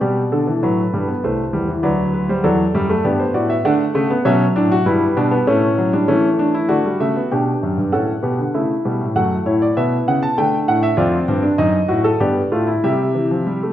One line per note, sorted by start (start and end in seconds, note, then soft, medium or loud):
0.01 0.61 B2 medium
0.01 0.20 G3 medium
0.01 0.20 G4 medium
0.01 0.61 D5 medium
0.32 0.47 D3 medium
0.32 1.80 A4 medium
0.47 0.62 E3 medium
0.63 0.82 A2 medium
0.63 0.82 F#3 medium
0.63 1.22 B4 medium
0.93 1.12 G2 medium
0.93 1.08 G3 medium
1.08 1.23 B3 medium
1.24 1.42 C2 medium
1.24 1.42 A3 medium
1.24 1.82 C5 medium
1.53 1.72 E2 medium
1.53 1.68 G3 medium
1.68 1.83 E3 medium
1.83 2.43 D2 medium
1.83 2.28 F#3 medium
1.83 2.12 B4 medium
1.83 2.02 D5 medium
2.14 2.29 B4 medium
2.29 2.44 G3 medium
2.29 2.44 C5 medium
2.44 2.63 E2 medium
2.44 2.63 F#3 medium
2.44 3.03 A4 medium
2.44 3.03 D5 medium
2.75 2.93 F#2 medium
2.75 2.89 G3 medium
2.89 3.04 A3 medium
3.04 3.23 G2 medium
3.04 3.63 B3 medium
3.04 3.23 G4 medium
3.04 3.19 D5 medium
3.19 3.34 C5 medium
3.34 3.53 A2 medium
3.34 3.53 F#4 medium
3.34 3.49 D5 medium
3.50 3.65 E5 medium
3.65 3.84 D3 medium
3.65 3.93 A3 medium
3.65 3.84 D4 medium
3.65 4.24 F#5 medium
3.95 4.14 C#3 medium
3.95 4.10 A3 medium
4.10 4.25 B3 medium
4.25 4.44 B2 medium
4.25 4.84 F#3 medium
4.25 4.44 C#4 medium
4.25 4.44 E5 medium
4.56 4.75 A2 medium
4.56 4.71 D4 medium
4.56 4.75 D5 medium
4.72 4.86 F#4 medium
4.86 5.05 G2 medium
4.86 5.45 G3 medium
4.86 5.05 E4 medium
4.86 5.45 B4 medium
5.17 5.35 B2 medium
5.17 5.31 D4 medium
5.31 5.46 B3 medium
5.47 6.06 A2 medium
5.47 5.66 A3 medium
5.47 5.91 C#4 medium
5.47 6.66 C#5 medium
5.78 5.92 F#3 medium
5.93 6.08 G3 medium
5.93 6.08 D4 medium
6.08 6.68 E3 medium
6.08 6.67 A3 medium
6.08 6.27 C#4 medium
6.39 6.54 D4 medium
6.54 6.69 E4 medium
6.69 6.88 D3 medium
6.69 6.84 A3 medium
6.69 7.29 F#4 medium
6.69 6.88 D5 medium
6.85 7.00 G3 medium
7.00 7.19 C#3 medium
7.00 7.15 A3 medium
7.00 7.19 E5 medium
7.16 7.31 B3 medium
7.32 7.51 B2 medium
7.32 7.91 D4 medium
7.32 7.92 G4 medium
7.32 7.91 G5 medium
7.63 7.78 F#2 medium
7.78 7.93 G2 medium
7.92 8.12 A2 medium
7.92 8.12 C#4 medium
7.92 8.12 A4 medium
7.92 8.52 F#5 medium
8.23 8.38 B2 medium
8.23 8.42 B3 medium
8.23 8.42 G4 medium
8.39 8.54 D3 medium
8.54 8.73 C#3 medium
8.54 8.73 A3 medium
8.54 9.14 E4 medium
8.54 9.14 E5 medium
8.85 9.00 B2 medium
8.85 9.04 G3 medium
9.01 9.15 A2 medium
9.15 9.34 F#2 medium
9.15 9.75 A3 medium
9.15 9.35 F#4 medium
9.15 9.35 F#5 medium
9.46 9.65 A2 medium
9.46 10.34 E4 medium
9.46 9.61 C#5 medium
9.62 9.76 D5 medium
9.77 9.96 B2 medium
9.77 10.36 B3 medium
9.77 9.96 E5 medium
10.08 10.26 C#3 medium
10.08 10.22 F#5 medium
10.23 10.37 A5 medium
10.38 10.56 D3 medium
10.38 10.96 A3 medium
10.38 10.96 D4 medium
10.38 10.56 G5 medium
10.68 10.87 A2 medium
10.68 10.82 F#5 medium
10.83 10.97 E5 medium
10.97 11.16 F2 medium
10.97 11.27 C4 medium
10.97 11.16 F4 medium
10.97 11.56 D5 medium
11.28 11.47 G2 medium
11.28 11.43 C4 medium
11.43 11.58 D4 medium
11.58 11.77 F#2 medium
11.58 11.77 D#4 medium
11.58 12.18 D#5 medium
11.88 12.08 A2 medium
11.88 12.04 F#4 medium
12.04 12.19 A4 medium
12.20 12.40 G2 medium
12.20 12.40 B3 medium
12.20 12.40 G4 medium
12.20 12.81 D5 medium
12.51 12.71 A2 medium
12.51 12.71 A3 medium
12.51 12.67 F4 medium
12.67 12.82 E4 medium
12.84 13.73 C3 medium
12.84 13.03 G3 medium
12.84 13.73 G4 medium
12.84 13.73 E5 medium
13.15 13.30 E3 medium
13.31 13.46 F3 medium
13.47 13.62 G3 medium
13.63 13.73 A3 medium